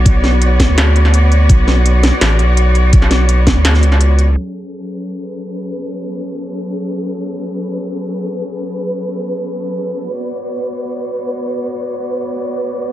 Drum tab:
HH |x---x-x-x-x-x-x-|x---x-x-x-x-x-x-|x-x-x-x-x-x-x-x-|----------------|
SD |--o---o-o--o----|--o---o-o-------|-oo---o-oo-o----|----------------|
BD |o-----o---------|o---------------|o-----o---------|----------------|

HH |----------------|----------------|----------------|----------------|
SD |----------------|----------------|----------------|----------------|
BD |----------------|----------------|----------------|----------------|

HH |----------------|
SD |----------------|
BD |----------------|